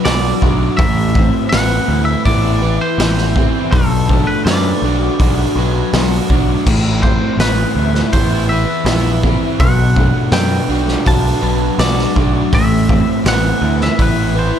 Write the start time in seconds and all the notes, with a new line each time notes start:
Already playing: F#3 A3 D4 F#4 B4
0.05 B1 D4 F#4 D5, snare, open hi-hat
0.42 B1 D4 F#4, kick
0.77 A1 A2 E5, kick, open hi-hat
1.15 C4, kick
1.49 A1 B3 B4 F#5, snare, open hi-hat
1.88 D2 E4
2.05 E5
2.25 A1 B3 E4 D5, kick, open hi-hat
2.62 E3 B4
2.81 C5
2.98 A1 B3 E4, snare, open hi-hat
3.18 snare
3.36 C4 E4, kick
3.71 B1 B2 A4, kick, open hi-hat
4.09 A3 D4, kick
4.27 B4
4.45 F#2 D4 B4 D5, snare, open hi-hat
4.82 B1 D4 F#4
5.19 B1 D4 F#4 C5, kick, open hi-hat
5.56 B1 F#3 B4
5.93 B1 D4 F#4, snare, open hi-hat
6.30 B1 D4 F#4, kick
6.66 A1 A2, kick, crash
7.03 C4 C5, kick
7.37 A1 B4, snare, open hi-hat
7.42 B3
7.75 D2 E4
7.95 snare
8.13 A1 B3 E4 C5, kick, open hi-hat
8.49 E3 B4 E5
8.85 A#1 E4, snare, open hi-hat
8.89 B3
9.23 C4 E4, kick
9.60 B1 B2 F#5, kick, open hi-hat
9.96 A3 D4, kick
10.32 F#2 D4 B4 G5, snare, open hi-hat
10.69 B1 D4 F#4
10.88 snare
11.05 B1 D4 F#4 A5, kick, open hi-hat
11.41 B1 F#3 B4
11.78 B1 D4 F#4 D5, snare, open hi-hat
11.99 snare
12.16 B1 D4 F#4, kick
12.52 A1 A2 E5, kick, open hi-hat
12.89 C4, kick
13.25 A1 B3 B4 F#5, snare, open hi-hat
13.62 D2 E4
13.81 E5, snare
13.99 A1 B3 E4 B4, kick, open hi-hat
14.35 E3 B4 C5